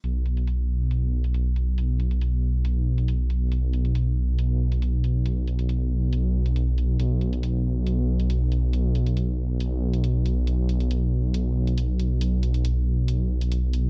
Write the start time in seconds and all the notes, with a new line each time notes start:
0.04 B1, closed hi-hat
0.26 closed hi-hat
0.37 closed hi-hat
0.47 closed hi-hat
0.91 closed hi-hat
1.24 closed hi-hat
1.34 closed hi-hat
1.56 closed hi-hat
1.78 closed hi-hat
2.00 closed hi-hat
2.11 closed hi-hat
2.21 closed hi-hat
2.65 closed hi-hat
2.98 closed hi-hat
3.08 closed hi-hat
3.30 closed hi-hat
3.52 closed hi-hat
3.73 closed hi-hat
3.85 closed hi-hat
3.95 closed hi-hat
4.39 closed hi-hat
4.72 closed hi-hat
4.82 closed hi-hat
5.04 closed hi-hat
5.26 closed hi-hat
5.47 closed hi-hat
5.59 closed hi-hat
5.69 closed hi-hat
6.13 closed hi-hat
6.46 closed hi-hat
6.56 closed hi-hat
6.78 closed hi-hat
6.99 B1, closed hi-hat
7.21 closed hi-hat
7.33 closed hi-hat
7.43 closed hi-hat
7.87 closed hi-hat
8.20 closed hi-hat
8.30 closed hi-hat
8.52 closed hi-hat
8.73 closed hi-hat
8.95 closed hi-hat
9.06 closed hi-hat
9.17 closed hi-hat
9.60 closed hi-hat
9.94 closed hi-hat
10.04 closed hi-hat
10.26 closed hi-hat
10.47 closed hi-hat
10.69 closed hi-hat
10.80 closed hi-hat
10.91 closed hi-hat
11.34 closed hi-hat
11.67 closed hi-hat
11.78 closed hi-hat
12.00 closed hi-hat
12.21 closed hi-hat
12.43 closed hi-hat
12.54 closed hi-hat
12.65 closed hi-hat
13.08 closed hi-hat
13.41 closed hi-hat
13.52 closed hi-hat
13.73 closed hi-hat